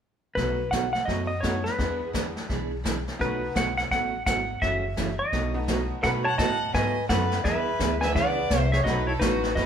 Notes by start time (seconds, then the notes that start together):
0.35 B1 B2 F#3 A3 D#4 F#4 B4, brush sweep, kick, snare
0.71 B2 F#3 A3 D#4 F#4 F#5, kick, snare, hi-hat pedal
0.93 F#5, snare
1.05 F#2 B2 F#3 A3 D#4 F#4 D#5, brush sweep, kick, snare
1.27 D#5
1.41 B2 F#3 A3 B3 D#4 F#4 C#5, kick, snare, hi-hat pedal
1.64 B4, snare
1.78 E2 E3 G#3 B3 D4 E4 G#4, brush sweep, kick, snare
2.13 E3 B3 D4 G#4, kick, snare, hi-hat pedal
2.37 snare
2.49 B1 E3 B3 D4 G#4, brush sweep, kick, snare
2.84 E3 B3 D4 G#4, kick, snare, hi-hat pedal
3.07 snare
3.19 B1 B2 F#3 A3 B3 D#4 F#4 B4, brush sweep, kick, snare
3.55 B1 B2 F#3 A3 D#4 F#4 F#5, kick, snare, hi-hat pedal
3.77 F#5, snare
3.91 A1 B2 F#3 A3 D#4 F#4 F#5, brush sweep, kick, snare
4.26 G#1 B2 F#3 A3 D#4 F#4 F#5, kick, snare, hi-hat pedal
4.61 F#1 C#3 E3 A3 C#4 F#4 E5, brush sweep, kick, snare
4.97 C#3 E3 A3 C#4 F#4, kick, snare, hi-hat pedal
5.19 D#5
5.32 B1 B2 F#3 A3 D#4 F#4, brush sweep, kick, snare
5.54 A3 B3 D#4 F#4
5.68 B2 F#3 A3 D#4 F#4, kick, snare, hi-hat pedal
6.02 B2 F#3 A3 B3 D#4 F#4 A4 B4 F#5, brush sweep, kick, snare
6.24 C#5 F#5 A5
6.38 A2 B2 F#3 A3 D#4 F#4 D#5 F#5 A5, kick, snare, hi-hat pedal
6.74 G#2 B2 F#3 A3 D#4 F#4 B4 D#5 G#5, brush sweep, kick, snare
7.09 F#2 B2 F#3 A3 D#4 F#4 A4 B4 F#5, kick, snare, hi-hat pedal
7.31 snare
7.44 E2 E3 B3 D4 G#4 B4 E5, brush sweep, kick, snare
7.79 D2 E3 B3 D4 G#4, kick, snare, hi-hat pedal
8.01 E3 G#3 B3 D4 E4 B4 E5 G#5, snare
8.14 C#2 E3 B3 D4 G#4 B4 D5 F#5, brush sweep, kick, snare
8.50 C2 E3 B3 D4 G#4, kick, snare, hi-hat pedal
8.58 C5
8.63 E5
8.72 G#4 C#5 E5, snare
8.84 B1 B2 F#3 A3 B3 D#4 F#4 B4 D#5, brush sweep, kick, snare
9.07 E4 A4 C#5
9.19 A1 B2 F#3 A3 D#4 F#4 B4, kick, snare, hi-hat pedal
9.43 snare
9.55 F#1 B2 F#3 A3 D#4 F#4 B4 D#5, brush sweep, kick, snare